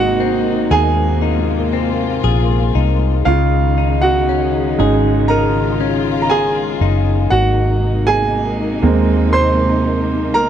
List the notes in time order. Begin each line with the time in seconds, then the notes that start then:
Already playing: G#1 G#2 C3 G#3 A#3 C4 D#4 F#4 G#4 D#5 F#5
0.20 C4
0.71 D#2 G#4 G#5
1.22 D#4 F4
1.73 C4
2.24 A#1 G#4
2.75 C2 D#4
3.25 C#2 C#3 D#3 G#3 D#4 F4 F5
3.78 D#4
4.01 F#4 F#5
4.29 C#4
4.78 G#1 G#3 C#4 D#4 G#4
5.28 D#4 F4 A#4 A#5
5.81 C#4
6.22 A#5
6.30 G#4 G#5
6.81 F#1 D#4
7.30 G#1 C3 G#3 A#3 D#4 F#4 F#5
8.07 G#4 G#5
8.82 D#2 G#3 A#3 C4
9.33 C5 C6
10.34 A#1 A#4 A#5